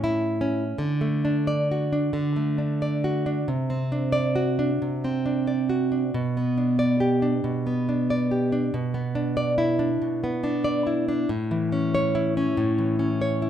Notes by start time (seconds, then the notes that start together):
Already playing: A2 C#4
0.04 E4
0.41 C#4
0.78 D3
1.01 A3
1.25 D4
1.47 D5
1.71 F#4
1.93 D4
2.13 D3
2.36 A3
2.58 D4
2.82 D5
3.04 F#4
3.26 D4
3.48 C3
3.70 C4
3.92 D4
4.12 D5
4.36 F#4
4.59 D4
4.82 C3
5.04 C4
5.26 D4
5.47 D5
5.69 F#4
5.92 D4
6.14 B2
6.37 B3
6.58 D4
6.79 D5
7.00 G4
7.22 D4
7.44 B2
7.67 B3
7.89 D4
8.10 D5
8.31 G4
8.52 D4
8.74 B2
8.94 B3
9.15 D4
9.37 D5
9.58 E4
9.79 D4
10.02 B2
10.24 B3
10.44 D4
10.64 D5
10.87 E4
11.09 D4
11.29 A2
11.51 E3
11.72 C#4
11.95 C#5
12.15 E4
12.37 C#4
12.57 A2
12.79 E3
12.99 C#4
13.22 C#5
13.42 E4